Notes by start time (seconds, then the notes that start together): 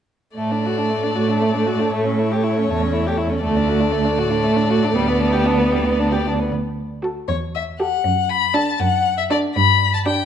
0.36 A2 A3 D5
0.51 D4
0.66 F#4
0.78 D4
0.89 A3
1.03 D4
1.15 A2 F#4
1.29 D4
1.42 A3
1.54 D4
1.66 F#4
1.79 D4
1.91 A2 A3 C#5
2.04 C#4
2.18 E4
2.32 G4
2.44 E4
2.58 C#4
2.68 E2 A3
2.82 C#4
2.93 E4
3.07 G4
3.18 E4
3.30 C#4
3.43 D2 A3 D5
3.56 D4
3.68 F#4
3.80 D4
3.92 A3
4.05 D4
4.18 A2 F#4
4.30 D4
4.44 A3
4.56 D4
4.70 F#4
4.84 D4
4.95 D2 G3 B3
5.08 B3
5.19 D4
5.32 G4
5.46 D4
5.58 B3
5.72 D2 G3
5.85 B3
5.99 D4
6.12 G4
6.27 D4
6.39 B3
6.52 D2
7.03 F#4 A4
7.28 E2 C#5
7.55 E5
7.79 G4 A4 F#5
8.05 F#2
8.30 B5
8.54 D4 A4 A5
8.79 F#2 F#5
9.18 E5
9.30 D4 A4 D5
9.56 G2 B5
9.94 A5
10.06 D4 G4 G5